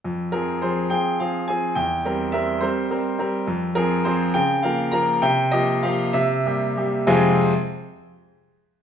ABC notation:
X:1
M:6/8
L:1/8
Q:3/8=68
K:Fm
V:1 name="Grand piano"
z B c g f a | g2 =e c3 | z B c g f b | g e f =e3 |
[F,,C,A,CFAa] z4 z |]
V:2 name="Grand piano"
F,, [F,CA] [F,CA] [F,CA] [F,CA] [F,CA] | =E,, [G,CB] [G,CB] [G,CB] [G,CB] [G,CB] | F,, [F,CA] [F,CA] D, [F,B,B] [F,B,B] | C, [F,B,G] [F,B,G] C, [G,B,G] [G,B,G] |
z6 |]